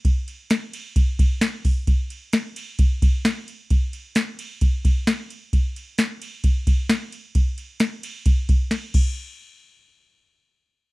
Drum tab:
CC |--------|--------|--------|--------|
RD |xxxxxxxx|xxxxxxxx|xxxxxxxx|xxxxxxxx|
HH |-------o|--------|--------|--------|
SD |--o---o-|--o---o-|--o---o-|--o---o-|
BD |o---oo-o|o---oo--|o---oo--|o---oo--|

CC |-------x|--------|
RD |xxxxxxx-|--------|
HH |--------|--------|
SD |--o---o-|--------|
BD |o---oo-o|--------|